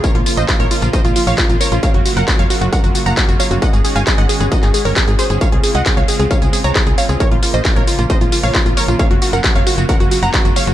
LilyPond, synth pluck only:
\new Staff \with { instrumentName = "Synth pluck" } { \time 4/4 \key bes \minor \tempo 4 = 134 <bes' des''>16 f'16 f'16 <c'' ees''>16 f'16 <bes' des''>16 f'16 f'16 <c'' ees''>16 f'16 f'16 <des'' f''>16 f'16 f'16 <bes' des''>16 f'16 | <des'' f''>16 ges'16 ges'16 <bes' ges''>16 ges'16 <des'' f''>16 ges'16 ges'16 <bes' ges''>16 ges'16 ges'16 <ges'' bes''>16 ges'16 ges'16 <des'' f''>16 ges'16 | <ees'' ges''>16 aes'16 aes'16 <f'' aes''>16 aes'16 <ees'' ges''>16 aes'16 aes'16 <ges' ees''>16 aes'16 aes'16 <bes' des''>16 aes'16 aes'16 <aes' c''>16 aes'16 | <des'' f''>16 aes'16 aes'16 <ees'' ges''>16 aes'16 <des'' f''>16 aes'16 aes'16 <des'' f''>16 aes'16 aes'16 <des'' bes''>16 aes'16 aes'16 <des'' f''>16 aes'16 |
<bes' des''>16 f'16 f'16 <c'' ees''>16 f'16 <bes' des''>16 f'16 f'16 <c'' ees''>16 f'16 f'16 <des'' f''>16 f'16 f'16 <bes' des''>16 f'16 | <des'' f''>16 ges'16 ges'16 <bes' ges''>16 ges'16 <des'' f''>16 ges'16 ges'16 <bes' ges''>16 ges'16 ges'16 <ges'' bes''>16 ges'16 ges'16 <des'' f''>16 ges'16 | }